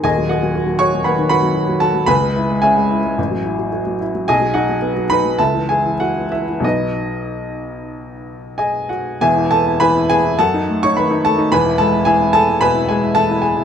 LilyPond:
<<
  \new Staff \with { instrumentName = "Upright piano" } { \time 4/4 \key e \major \tempo 4 = 108 <gis' dis'' gis''>8 <fis' dis'' fis''>4 <cis'' cis'''>8 <b' fis'' b''>8 <b' fis'' b''>4 <a' a''>8 | <b' gis'' b''>4 <gis' e'' gis''>2~ <gis' e'' gis''>8 r8 | <gis' dis'' gis''>8 <fis' dis'' fis''>4 <b' b''>8 <a' e'' a''>8 <gis' gis''>8 <fis' fis''>8 <e' e''>8 | <dis' b' dis''>2. <gis' dis'' gis''>8 <fis' fis''>8 |
<gis' e'' gis''>8 <a' a''>8 <b' gis'' b''>8 <gis' gis''>8 <a' fis'' a''>8. <cis'' cis'''>16 <b' b''>8 <a' a''>8 | <b' gis'' b''>8 <a' a''>8 <gis' e'' gis''>8 <a' a''>8 <b' gis'' b''>8 <gis' gis''>8 <a' e'' a''>8 <gis' gis''>8 | }
  \new Staff \with { instrumentName = "Upright piano" } { \clef bass \time 4/4 \key e \major <dis,, dis,>16 fis8 fis16 fis'16 fis16 fis'16 fis16 dis,16 dis16 fis'16 fis16 fis'16 fis16 fis'16 fis16 | cis,16 gis16 e'16 gis16 cis'16 gis16 e'16 gis16 a,,16 fis16 e'16 fis16 fis'16 fis16 e'16 fis16 | b,,16 fis16 dis'16 fis16 b16 fis16 dis'16 fis16 cis,16 e16 e'16 e16 e'16 e8 e16 | <b,, fis b>1 |
<e,, e,>16 e'16 b16 e'16 e16 e'16 b16 e'16 fis,16 dis'16 a16 dis'16 dis16 dis'16 a16 dis'16 | <e,, e,>16 e'16 gis16 e'16 e16 e'16 gis'16 e'16 b,16 e'16 gis16 e'16 e16 e'8 e'16 | }
>>